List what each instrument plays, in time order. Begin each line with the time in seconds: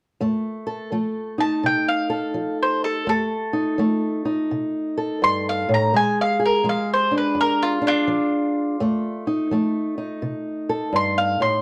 0.21 steel-string acoustic guitar F2 A3
0.67 steel-string acoustic guitar A4
0.92 steel-string acoustic guitar F3 A3
1.38 steel-string acoustic guitar D#4, mandolin A5
1.63 steel-string acoustic guitar C3, mandolin G5
1.89 mandolin F5
2.10 steel-string acoustic guitar A4
2.34 steel-string acoustic guitar F3
2.63 mandolin C5
2.84 mandolin A4
3.07 steel-string acoustic guitar F2 A3, mandolin A4
3.53 steel-string acoustic guitar D#4
3.78 steel-string acoustic guitar F3 A3
4.25 steel-string acoustic guitar D#4
4.51 steel-string acoustic guitar C3
4.98 steel-string acoustic guitar A4
5.22 steel-string acoustic guitar G2, mandolin C6
5.49 mandolin F5
5.69 steel-string acoustic guitar A2
5.74 mandolin A#5
5.94 steel-string acoustic guitar A#2 G#3, mandolin G#5
6.21 mandolin F5
6.39 steel-string acoustic guitar G#4
6.46 mandolin A#4
6.64 steel-string acoustic guitar F3 G#3
6.69 mandolin F5
6.94 mandolin C5
7.11 steel-string acoustic guitar D4
7.18 mandolin B4
7.35 steel-string acoustic guitar F2
7.41 mandolin A#4
7.63 mandolin F4
7.82 steel-string acoustic guitar D4
7.87 mandolin D4 F4
8.07 steel-string acoustic guitar F3
8.80 steel-string acoustic guitar F2 A3
9.27 steel-string acoustic guitar D#4
9.51 steel-string acoustic guitar F3 A3
9.98 steel-string acoustic guitar D#4
10.22 steel-string acoustic guitar C3
10.69 steel-string acoustic guitar A4
10.93 steel-string acoustic guitar G2, mandolin C6
11.18 mandolin F5
11.40 steel-string acoustic guitar A2, mandolin C6